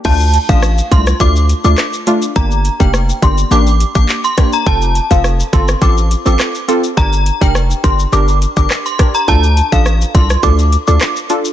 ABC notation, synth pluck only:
X:1
M:4/4
L:1/16
Q:1/4=104
K:Dm
V:1 name="Synth pluck"
[A,DF] z2 [A,DF] z2 [A,DF] z [A,DF] z2 [A,DF] z2 [A,DF] z | [B,DG] z2 [B,DG] z2 [B,DG] z [B,DG] z2 [B,DG] z2 [B,DG] z | [CFA] z2 [CFA] z2 [CFA] z [CFA] z2 [CFA] z2 [CFA] z | [DGB] z2 [DGB] z2 [DGB] z [DGB] z2 [DGB] z2 [DGB] z |
[DFA] z2 [DFA] z2 [DFA] z [DFA] z2 [DFA] z2 [DFA] z |]